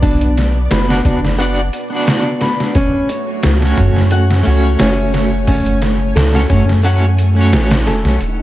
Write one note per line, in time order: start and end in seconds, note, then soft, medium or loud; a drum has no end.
0.00 0.68 B1 medium
0.00 0.84 B3 medium
0.00 2.71 B3 medium
0.00 0.85 D4 medium
0.00 0.35 D4 medium
0.00 0.86 F#4 medium
0.00 0.87 D5 medium
0.00 2.71 D5 medium
0.00 kick loud
0.00 open hi-hat medium
0.21 closed hi-hat soft
0.37 snare soft
0.37 closed hi-hat medium
0.71 1.02 F#1 medium
0.71 1.02 B4 medium
0.71 snare loud
0.71 closed hi-hat medium
0.89 1.18 B3 medium
0.89 1.19 D4 medium
0.89 1.20 F#4 medium
0.89 1.20 D5 medium
0.89 snare soft
1.05 1.70 F#1 medium
1.05 1.26 D4 medium
1.05 kick medium
1.05 closed hi-hat medium
1.25 snare soft
1.39 1.59 B3 medium
1.39 1.59 D4 medium
1.39 1.60 F#4 medium
1.39 1.60 D5 medium
1.39 1.71 F#5 medium
1.39 closed hi-hat medium
1.73 closed hi-hat medium
1.90 2.73 B3 medium
1.90 2.74 D4 medium
1.95 2.75 F#4 medium
1.95 2.76 D5 medium
2.07 snare loud
2.07 closed hi-hat medium
2.41 2.74 B4 medium
2.41 snare medium
2.41 closed hi-hat medium
2.60 snare medium
2.74 2.92 F#1 medium
2.74 8.17 A3 medium
2.74 3.08 C#4 medium
2.74 5.45 F#4 medium
2.74 8.16 C#5 medium
2.74 kick loud
2.74 closed hi-hat medium
3.09 4.09 C#5 medium
3.09 closed hi-hat medium
3.43 3.75 C#2 medium
3.43 snare loud
3.43 closed hi-hat medium
3.60 4.41 A3 medium
3.60 4.42 C#4 medium
3.60 snare soft
3.65 4.43 F#4 medium
3.65 4.44 C#5 medium
3.77 4.43 F#2 medium
3.77 kick medium
3.77 closed hi-hat medium
3.96 snare soft
4.11 4.44 F#5 medium
4.11 closed hi-hat medium
4.31 snare medium
4.43 4.77 C#2 medium
4.43 6.29 A3 medium
4.43 6.30 C#4 medium
4.43 6.31 F#4 medium
4.43 closed hi-hat medium
4.49 6.32 C#5 medium
4.79 6.14 F#1 medium
4.79 5.11 C#4 loud
4.79 snare loud
4.79 closed hi-hat medium
5.14 5.46 C#5 medium
5.14 snare medium
5.14 closed hi-hat medium
5.46 5.80 C#4 medium
5.46 8.17 G#5 medium
5.46 kick loud
5.46 open hi-hat medium
5.66 closed hi-hat soft
5.82 snare medium
5.82 closed hi-hat medium
6.16 6.46 C#2 medium
6.16 6.47 A4 medium
6.16 snare loud
6.16 closed hi-hat medium
6.33 6.63 A3 medium
6.33 6.64 C#4 medium
6.33 6.64 F#4 medium
6.33 6.65 C#5 medium
6.33 snare soft
6.49 7.54 F#2 medium
6.49 6.71 C#4 medium
6.49 kick medium
6.49 closed hi-hat medium
6.69 snare soft
6.83 7.04 A3 medium
6.83 7.04 C#4 medium
6.83 7.05 F#4 medium
6.83 7.05 C#5 loud
6.83 7.17 F#5 medium
6.83 closed hi-hat medium
7.18 closed hi-hat medium
7.35 8.18 A3 medium
7.35 8.19 C#4 medium
7.35 8.20 F#4 medium
7.41 8.21 C#5 medium
7.53 7.89 A1 loud
7.53 snare loud
7.53 closed hi-hat medium
7.71 snare loud
7.71 closed hi-hat medium
7.87 8.03 E1 medium
7.87 8.19 A4 medium
7.87 snare medium
7.87 closed hi-hat medium
8.05 8.19 B1 medium
8.05 snare medium
8.19 8.42 D#1 medium
8.19 8.42 A#3 medium
8.19 8.42 D#4 medium
8.19 8.42 F#4 medium
8.19 8.42 D#5 medium
8.19 closed hi-hat medium